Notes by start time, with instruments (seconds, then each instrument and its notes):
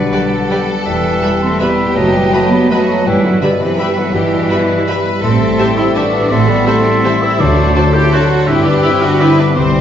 Already playing: harp B2 G3 B3 D4, french horn section D3, cello section F#3, bassoon G3, violin section B4, clarinet B4, oboe D5, flute F#5
0.12 harp G3, viola section G4 B4, violin section A4 D5 G5
0.32 harp D4
0.51 harp B3, viola section G4 B4, violin section D5 G5
0.69 harp G3
0.86 double bass section E1, harp E2, french horn section E3, cello section G3, bassoon G3, clarinet B4, oboe E5, flute G5
1.04 harp B2
1.22 harp B3, viola section G4 B4, violin section E5 B5
1.41 french horn section A3, cello section C4, harp E4, flute C6
1.60 harp B2, french horn section G3, bassoon G3, cello section B3, viola section G4 B4, violin section G4 E5 B5, clarinet B4, oboe E5, flute B5
1.79 harp B3
1.94 double bass section F#1, harp F#2, french horn section F#3, bassoon F#3, cello section A3, clarinet B4, oboe D#5, flute A5
2.13 french horn section E3, harp F#3, cello section G3, flute G5
2.32 french horn section F#3, bassoon F#3, cello section A3, harp B3, clarinet B4, viola section B4, violin section D#5 B5, oboe D#5, flute A5
2.51 french horn section G3, cello section B3, harp D#4, flute B5
2.70 french horn section F#3, bassoon F#3, harp F#3, cello section A3, violin section F#4 D#5 B5, clarinet B4, viola section B4, oboe D#5, flute A5
2.88 french horn section F#3, cello section A3, harp B3, flute A5
3.05 double bass section G1, harp G2, french horn section E3, cello section G3, bassoon G3, violin section E4, clarinet B4, oboe E5, flute G5
3.23 french horn section D3, cello section F#3, harp G3, flute F#5
3.40 french horn section B2, cello section D3, harp B3, viola section G4 B4, violin section B4 E5 B5, flute D5
3.60 french horn section C3, cello section E3, harp E4, flute E5
3.78 french horn section E3, harp G3, cello section G3, bassoon G3, viola section G4 B4, clarinet B4, oboe E5, violin section E5 B5, flute G5
3.97 french horn section D3, cello section F#3, harp B3, flute F#5
4.13 double bass section G1, harp G2, french horn section B2, cello section E3, bassoon G3, violin section G4, clarinet B4, flute E5, oboe E5
4.31 harp G3
4.50 harp B3, violin section E4 E5 B5, viola section G4 B4
4.69 harp E4
4.87 harp G3, viola section G4 B4, violin section B4 E5 B5
5.06 harp B3
5.21 double bass section A1, harp A2, bassoon G3, french horn section A3, cello section C4, clarinet A4, violin section A4, oboe E5, flute C6
5.39 harp E3
5.58 harp A3, viola section G4 C5, violin section G4 E5 A5
5.76 french horn section C4, cello section E4, harp E4, flute E6
5.95 harp E3, french horn section B3, cello section D4, violin section F#4 E5 A5, viola section G4 C5, flute D6
6.15 harp A3
6.30 double bass section A1, harp A2, bassoon G3, french horn section A3, cello section C4, clarinet A4, oboe E5, flute C6
6.47 harp E3, french horn section G3, cello section B3, flute B5
6.66 bassoon G3, harp A3, french horn section A3, cello section C4, viola section G4 C5, clarinet A4, oboe E5, violin section E5 A5, flute C6
6.86 harp E4
7.04 harp E3, violin section E4 E5 A5, viola section G4 C5
7.22 harp A3, french horn section C4, cello section E4, flute E6
7.39 double bass section D2, harp D3, timpani D3, bassoon F#3, french horn section A3, cello section D4, violin section F#4, clarinet A4, oboe C5, flute D6
7.56 harp A3
7.75 harp C4, viola section F#4 C5, violin section A4 D5 A5
7.93 harp D4, french horn section E4, cello section G4, flute G6
8.11 bassoon F#3, harp A3, french horn section D4, viola section F#4 C5, cello section F#4, clarinet A4, oboe C5, violin section D5 A5, flute F#6
8.46 double bass section G1, harp G2, bassoon G3, french horn section C4, cello section E4, violin section G4, clarinet G4, oboe B4, flute E6
8.63 harp D3, french horn section B3, cello section D4, flute D6
8.82 french horn section C4, cello section E4, viola section G4 B4, violin section D5 G5, flute E6
9.01 harp D4, french horn section D4, cello section F#4, flute F#6
9.19 harp D3, french horn section C4, cello section E4, viola section G4 B4, violin section B4 D5 G5, flute E6
9.38 harp B3, french horn section B3, cello section D4, flute D6
9.55 double bass section C2, harp C3, bassoon E3, french horn section G3, cello section C4, clarinet G4, violin section C5, oboe C5, flute C6
9.74 harp G3